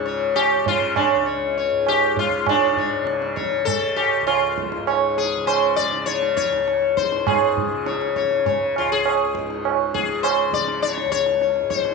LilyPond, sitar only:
\new Staff \with { instrumentName = "Sitar" } { \time 4/4 \tempo 4 = 100 << { des''8 r4. des''8 des''8 r4 | r8 des''8 r8 des''8 r2 | des''8 r2. r8 | r4 des''8 des''8 des''8 f'16 aes'4~ aes'16~ |
aes'16 r2 r8. des''8 r8 | } \\ { r8 g'8 f'8 d'8 r4 g'8 f'8 | d'4. r8 a'8 g'8 f'4 | r8 aes'8 c''8 d''8 des''8 des''4 c''8 | aes'4. r2 r8 |
r8 aes'8 c''8 d''8 des''8 des''4 c''8 | } >> }